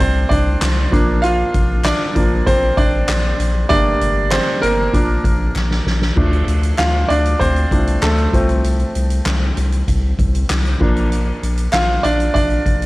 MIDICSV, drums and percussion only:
0, 0, Header, 1, 2, 480
1, 0, Start_track
1, 0, Key_signature, -2, "major"
1, 0, Tempo, 617284
1, 959, Time_signature, 4, 2, 24, 8
1, 9998, End_track
2, 0, Start_track
2, 0, Title_t, "Drums"
2, 0, Note_on_c, 9, 36, 77
2, 1, Note_on_c, 9, 42, 95
2, 77, Note_off_c, 9, 36, 0
2, 79, Note_off_c, 9, 42, 0
2, 238, Note_on_c, 9, 36, 84
2, 242, Note_on_c, 9, 42, 68
2, 316, Note_off_c, 9, 36, 0
2, 320, Note_off_c, 9, 42, 0
2, 479, Note_on_c, 9, 38, 104
2, 480, Note_on_c, 9, 39, 95
2, 481, Note_on_c, 9, 42, 87
2, 483, Note_off_c, 9, 39, 0
2, 483, Note_on_c, 9, 39, 87
2, 556, Note_off_c, 9, 38, 0
2, 559, Note_off_c, 9, 42, 0
2, 561, Note_off_c, 9, 39, 0
2, 721, Note_on_c, 9, 36, 106
2, 724, Note_on_c, 9, 38, 36
2, 726, Note_on_c, 9, 42, 75
2, 798, Note_off_c, 9, 36, 0
2, 802, Note_off_c, 9, 38, 0
2, 804, Note_off_c, 9, 42, 0
2, 960, Note_on_c, 9, 42, 81
2, 1038, Note_off_c, 9, 42, 0
2, 1199, Note_on_c, 9, 42, 64
2, 1201, Note_on_c, 9, 36, 88
2, 1276, Note_off_c, 9, 42, 0
2, 1278, Note_off_c, 9, 36, 0
2, 1433, Note_on_c, 9, 39, 98
2, 1439, Note_on_c, 9, 38, 110
2, 1441, Note_on_c, 9, 42, 98
2, 1443, Note_off_c, 9, 39, 0
2, 1443, Note_on_c, 9, 39, 91
2, 1517, Note_off_c, 9, 38, 0
2, 1518, Note_off_c, 9, 42, 0
2, 1521, Note_off_c, 9, 39, 0
2, 1678, Note_on_c, 9, 42, 69
2, 1680, Note_on_c, 9, 36, 92
2, 1756, Note_off_c, 9, 42, 0
2, 1758, Note_off_c, 9, 36, 0
2, 1919, Note_on_c, 9, 36, 91
2, 1920, Note_on_c, 9, 42, 96
2, 1997, Note_off_c, 9, 36, 0
2, 1998, Note_off_c, 9, 42, 0
2, 2157, Note_on_c, 9, 36, 98
2, 2157, Note_on_c, 9, 42, 66
2, 2234, Note_off_c, 9, 36, 0
2, 2235, Note_off_c, 9, 42, 0
2, 2398, Note_on_c, 9, 38, 97
2, 2399, Note_on_c, 9, 39, 102
2, 2401, Note_on_c, 9, 42, 76
2, 2403, Note_off_c, 9, 39, 0
2, 2403, Note_on_c, 9, 39, 84
2, 2476, Note_off_c, 9, 38, 0
2, 2478, Note_off_c, 9, 42, 0
2, 2481, Note_off_c, 9, 39, 0
2, 2641, Note_on_c, 9, 42, 76
2, 2719, Note_off_c, 9, 42, 0
2, 2879, Note_on_c, 9, 42, 90
2, 2880, Note_on_c, 9, 36, 120
2, 2957, Note_off_c, 9, 42, 0
2, 2958, Note_off_c, 9, 36, 0
2, 3120, Note_on_c, 9, 42, 64
2, 3198, Note_off_c, 9, 42, 0
2, 3353, Note_on_c, 9, 39, 99
2, 3358, Note_on_c, 9, 38, 113
2, 3360, Note_on_c, 9, 42, 89
2, 3363, Note_off_c, 9, 39, 0
2, 3363, Note_on_c, 9, 39, 98
2, 3436, Note_off_c, 9, 38, 0
2, 3438, Note_off_c, 9, 42, 0
2, 3441, Note_off_c, 9, 39, 0
2, 3600, Note_on_c, 9, 42, 78
2, 3678, Note_off_c, 9, 42, 0
2, 3839, Note_on_c, 9, 36, 84
2, 3843, Note_on_c, 9, 42, 83
2, 3917, Note_off_c, 9, 36, 0
2, 3921, Note_off_c, 9, 42, 0
2, 4077, Note_on_c, 9, 36, 90
2, 4081, Note_on_c, 9, 42, 66
2, 4154, Note_off_c, 9, 36, 0
2, 4159, Note_off_c, 9, 42, 0
2, 4321, Note_on_c, 9, 38, 60
2, 4321, Note_on_c, 9, 39, 92
2, 4398, Note_off_c, 9, 39, 0
2, 4399, Note_off_c, 9, 38, 0
2, 4439, Note_on_c, 9, 38, 67
2, 4517, Note_off_c, 9, 38, 0
2, 4561, Note_on_c, 9, 38, 90
2, 4639, Note_off_c, 9, 38, 0
2, 4679, Note_on_c, 9, 38, 87
2, 4757, Note_off_c, 9, 38, 0
2, 4798, Note_on_c, 9, 36, 110
2, 4798, Note_on_c, 9, 49, 86
2, 4876, Note_off_c, 9, 36, 0
2, 4876, Note_off_c, 9, 49, 0
2, 4921, Note_on_c, 9, 42, 34
2, 4999, Note_off_c, 9, 42, 0
2, 5038, Note_on_c, 9, 42, 61
2, 5115, Note_off_c, 9, 42, 0
2, 5157, Note_on_c, 9, 42, 55
2, 5235, Note_off_c, 9, 42, 0
2, 5273, Note_on_c, 9, 39, 91
2, 5277, Note_on_c, 9, 38, 114
2, 5282, Note_off_c, 9, 39, 0
2, 5282, Note_on_c, 9, 39, 76
2, 5355, Note_off_c, 9, 38, 0
2, 5360, Note_off_c, 9, 39, 0
2, 5522, Note_on_c, 9, 42, 70
2, 5599, Note_off_c, 9, 42, 0
2, 5641, Note_on_c, 9, 42, 47
2, 5719, Note_off_c, 9, 42, 0
2, 5760, Note_on_c, 9, 36, 68
2, 5763, Note_on_c, 9, 42, 92
2, 5838, Note_off_c, 9, 36, 0
2, 5841, Note_off_c, 9, 42, 0
2, 5880, Note_on_c, 9, 42, 36
2, 5958, Note_off_c, 9, 42, 0
2, 5999, Note_on_c, 9, 36, 89
2, 6002, Note_on_c, 9, 42, 65
2, 6076, Note_off_c, 9, 36, 0
2, 6080, Note_off_c, 9, 42, 0
2, 6123, Note_on_c, 9, 42, 55
2, 6201, Note_off_c, 9, 42, 0
2, 6240, Note_on_c, 9, 38, 90
2, 6240, Note_on_c, 9, 39, 98
2, 6245, Note_off_c, 9, 39, 0
2, 6245, Note_on_c, 9, 39, 76
2, 6318, Note_off_c, 9, 38, 0
2, 6323, Note_off_c, 9, 39, 0
2, 6359, Note_on_c, 9, 42, 31
2, 6437, Note_off_c, 9, 42, 0
2, 6481, Note_on_c, 9, 36, 100
2, 6483, Note_on_c, 9, 38, 33
2, 6486, Note_on_c, 9, 42, 69
2, 6559, Note_off_c, 9, 36, 0
2, 6561, Note_off_c, 9, 38, 0
2, 6564, Note_off_c, 9, 42, 0
2, 6602, Note_on_c, 9, 42, 45
2, 6680, Note_off_c, 9, 42, 0
2, 6722, Note_on_c, 9, 42, 83
2, 6800, Note_off_c, 9, 42, 0
2, 6840, Note_on_c, 9, 42, 34
2, 6917, Note_off_c, 9, 42, 0
2, 6961, Note_on_c, 9, 42, 60
2, 7039, Note_off_c, 9, 42, 0
2, 7077, Note_on_c, 9, 42, 53
2, 7155, Note_off_c, 9, 42, 0
2, 7197, Note_on_c, 9, 38, 110
2, 7199, Note_on_c, 9, 39, 102
2, 7202, Note_off_c, 9, 39, 0
2, 7202, Note_on_c, 9, 39, 80
2, 7275, Note_off_c, 9, 38, 0
2, 7280, Note_off_c, 9, 39, 0
2, 7441, Note_on_c, 9, 42, 72
2, 7518, Note_off_c, 9, 42, 0
2, 7560, Note_on_c, 9, 42, 44
2, 7638, Note_off_c, 9, 42, 0
2, 7682, Note_on_c, 9, 36, 77
2, 7682, Note_on_c, 9, 42, 90
2, 7760, Note_off_c, 9, 36, 0
2, 7760, Note_off_c, 9, 42, 0
2, 7922, Note_on_c, 9, 36, 90
2, 7924, Note_on_c, 9, 42, 63
2, 8000, Note_off_c, 9, 36, 0
2, 8002, Note_off_c, 9, 42, 0
2, 8045, Note_on_c, 9, 42, 54
2, 8123, Note_off_c, 9, 42, 0
2, 8162, Note_on_c, 9, 38, 105
2, 8165, Note_on_c, 9, 39, 94
2, 8167, Note_off_c, 9, 39, 0
2, 8167, Note_on_c, 9, 39, 84
2, 8240, Note_off_c, 9, 38, 0
2, 8244, Note_off_c, 9, 39, 0
2, 8283, Note_on_c, 9, 42, 35
2, 8360, Note_off_c, 9, 42, 0
2, 8405, Note_on_c, 9, 36, 107
2, 8407, Note_on_c, 9, 38, 32
2, 8407, Note_on_c, 9, 57, 70
2, 8483, Note_off_c, 9, 36, 0
2, 8485, Note_off_c, 9, 38, 0
2, 8485, Note_off_c, 9, 57, 0
2, 8526, Note_on_c, 9, 42, 46
2, 8604, Note_off_c, 9, 42, 0
2, 8645, Note_on_c, 9, 42, 74
2, 8723, Note_off_c, 9, 42, 0
2, 8890, Note_on_c, 9, 42, 66
2, 8967, Note_off_c, 9, 42, 0
2, 9001, Note_on_c, 9, 42, 51
2, 9079, Note_off_c, 9, 42, 0
2, 9119, Note_on_c, 9, 39, 96
2, 9125, Note_on_c, 9, 38, 102
2, 9129, Note_off_c, 9, 39, 0
2, 9129, Note_on_c, 9, 39, 88
2, 9202, Note_off_c, 9, 38, 0
2, 9207, Note_off_c, 9, 39, 0
2, 9365, Note_on_c, 9, 42, 72
2, 9443, Note_off_c, 9, 42, 0
2, 9486, Note_on_c, 9, 42, 47
2, 9564, Note_off_c, 9, 42, 0
2, 9605, Note_on_c, 9, 36, 77
2, 9608, Note_on_c, 9, 42, 96
2, 9683, Note_off_c, 9, 36, 0
2, 9686, Note_off_c, 9, 42, 0
2, 9720, Note_on_c, 9, 42, 31
2, 9798, Note_off_c, 9, 42, 0
2, 9843, Note_on_c, 9, 36, 79
2, 9845, Note_on_c, 9, 42, 65
2, 9921, Note_off_c, 9, 36, 0
2, 9923, Note_off_c, 9, 42, 0
2, 9969, Note_on_c, 9, 42, 51
2, 9998, Note_off_c, 9, 42, 0
2, 9998, End_track
0, 0, End_of_file